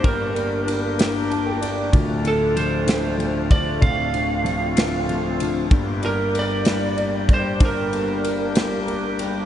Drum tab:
RD |xxxxxx|xxxxxx|xxxxxx|xxxxxx|
SD |---o--|---o--|---o--|---o--|
BD |o-----|o----o|o-----|o----o|

RD |xxxxxx|
SD |---o--|
BD |o-----|